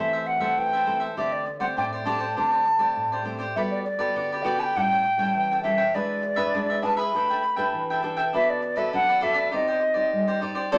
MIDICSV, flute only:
0, 0, Header, 1, 2, 480
1, 0, Start_track
1, 0, Tempo, 597491
1, 938, Time_signature, 4, 2, 24, 8
1, 8660, End_track
2, 0, Start_track
2, 0, Title_t, "Flute"
2, 0, Program_c, 0, 73
2, 0, Note_on_c, 0, 76, 85
2, 215, Note_on_c, 0, 78, 84
2, 227, Note_off_c, 0, 76, 0
2, 468, Note_on_c, 0, 79, 96
2, 480, Note_off_c, 0, 78, 0
2, 823, Note_off_c, 0, 79, 0
2, 945, Note_on_c, 0, 76, 82
2, 1066, Note_on_c, 0, 74, 78
2, 1078, Note_off_c, 0, 76, 0
2, 1279, Note_off_c, 0, 74, 0
2, 1284, Note_on_c, 0, 78, 83
2, 1332, Note_off_c, 0, 78, 0
2, 1428, Note_on_c, 0, 79, 95
2, 1481, Note_off_c, 0, 79, 0
2, 1660, Note_on_c, 0, 81, 94
2, 1883, Note_off_c, 0, 81, 0
2, 1907, Note_on_c, 0, 81, 96
2, 2591, Note_off_c, 0, 81, 0
2, 2857, Note_on_c, 0, 76, 79
2, 2906, Note_off_c, 0, 76, 0
2, 2981, Note_on_c, 0, 74, 75
2, 3077, Note_off_c, 0, 74, 0
2, 3082, Note_on_c, 0, 74, 83
2, 3556, Note_on_c, 0, 79, 100
2, 3568, Note_off_c, 0, 74, 0
2, 3693, Note_on_c, 0, 81, 92
2, 3701, Note_off_c, 0, 79, 0
2, 3724, Note_on_c, 0, 79, 100
2, 3732, Note_off_c, 0, 81, 0
2, 3829, Note_on_c, 0, 78, 92
2, 3837, Note_off_c, 0, 79, 0
2, 3860, Note_on_c, 0, 79, 100
2, 3868, Note_off_c, 0, 78, 0
2, 4521, Note_off_c, 0, 79, 0
2, 4525, Note_on_c, 0, 76, 87
2, 4779, Note_on_c, 0, 74, 90
2, 4791, Note_off_c, 0, 76, 0
2, 5492, Note_on_c, 0, 81, 100
2, 5505, Note_off_c, 0, 74, 0
2, 5603, Note_on_c, 0, 83, 99
2, 5615, Note_off_c, 0, 81, 0
2, 6451, Note_off_c, 0, 83, 0
2, 6703, Note_on_c, 0, 76, 96
2, 6829, Note_on_c, 0, 74, 84
2, 6841, Note_off_c, 0, 76, 0
2, 7048, Note_on_c, 0, 76, 100
2, 7060, Note_off_c, 0, 74, 0
2, 7173, Note_off_c, 0, 76, 0
2, 7184, Note_on_c, 0, 78, 110
2, 7416, Note_on_c, 0, 76, 96
2, 7428, Note_off_c, 0, 78, 0
2, 7657, Note_off_c, 0, 76, 0
2, 7664, Note_on_c, 0, 75, 88
2, 8349, Note_off_c, 0, 75, 0
2, 8618, Note_on_c, 0, 74, 94
2, 8660, Note_off_c, 0, 74, 0
2, 8660, End_track
0, 0, End_of_file